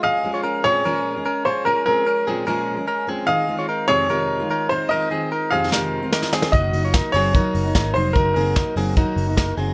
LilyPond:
<<
  \new Staff \with { instrumentName = "Upright piano" } { \time 4/4 \key bes \minor \tempo 4 = 148 f''4. des''2 c''8 | bes'8 bes'2 r4. | f''4. des''2 c''8 | ees''4. f''4. r4 |
ees''4. des''2 c''8 | bes'8 bes'2 r4. | }
  \new Staff \with { instrumentName = "Clean electric guitar" } { \time 4/4 \key bes \minor <aes' ees''>8. <f' des''>16 <des' bes'>8 <c' aes'>8 <des' bes'>4 <des' bes'>8 <f' des''>8 | <des' bes'>8 <c' aes'>8 <des' bes'>8 <c' aes'>8 <des' bes'>4 <des' bes'>8 <c' aes'>8 | <aes' ees''>8. <f' des''>16 <ees' bes'>8 <c' aes'>8 <ees' bes'>4 <ees' bes'>8 <ees' c''>8 | <ees' bes'>8 <c' aes'>8 <ees' bes'>8 <c' aes'>8 <ees' bes'>4 <ees' bes'>8 <c' aes'>8 |
<ges' ees''>8. <f' des''>16 <ees' bes'>8 <c' aes'>8 <ees' bes'>4 <ees' bes'>8 <ees' c''>8 | <ees' bes'>8 <c' aes'>8 <ees' bes'>8 <c' aes'>8 <ees' bes'>4 <ees' bes'>8 <c' aes'>8 | }
  \new Staff \with { instrumentName = "Steel-string acoustic guitar" } { \time 4/4 \key bes \minor <f aes des' aes'>8 <f aes des' aes'>4 <bes, f aes des' aes'>8 <bes, f aes des' aes'>8. <aes des' aes'>8. <f aes des' aes'>8 | <f aes des' aes'>8 <f aes des' aes'>4 <bes, f aes des' aes'>8 <bes, f aes des' aes'>8. <aes des' aes'>8. <f aes des' aes'>8 | <ees aes c' f'>8 <ees aes c' f'>4 <f, c ees aes c' f'>8 <f, c ees aes f'>8. <ees aes f'>8. <ees aes c' f'>8 | <ees aes c' f'>8 <ees aes c' f'>4 <f, c ees aes c' f'>8 <f, c ees aes c' f'>8. <ees aes c' f'>8. <ees aes c' f'>8 |
<ges bes ees' ges'>8 <ges bes ees' ges'>4 <ges bes ees' ges'>8 <ges bes ees' ges'>8. <bes ees' ges'>8. <ges bes ees' ges'>8 | <ges bes ees' ges'>8 <ges bes ees' ges'>4 <ges bes ees' ges'>8 <ges bes ees' ges'>8. <bes ees' ges'>8. <ges bes ees' ges'>8 | }
  \new Staff \with { instrumentName = "Picked electric bass" } { \clef bass \time 4/4 \key bes \minor r1 | r1 | r1 | r1 |
ges,,8 ges,,8. r16 ges,,8. r16 ges,,8 aes,,8 f,,8 | ges,,8 ges,,8. r16 ges,,8. r16 ges,,4 ges,,8 | }
  \new DrumStaff \with { instrumentName = "Drums" } \drummode { \time 4/4 r4 r4 r4 r4 | r4 r4 r4 r4 | r4 r4 r4 r4 | r4 r4 sn4 sn16 sn16 sn16 sn16 |
<hh bd>8 hho8 <hh bd sn>8 hho8 <hh bd>8 hho8 <hh bd sn>8 hho8 | <hh bd>8 hho8 <hh bd sn>8 hho8 <hh bd>8 hho8 <hh bd sn>8 hho8 | }
>>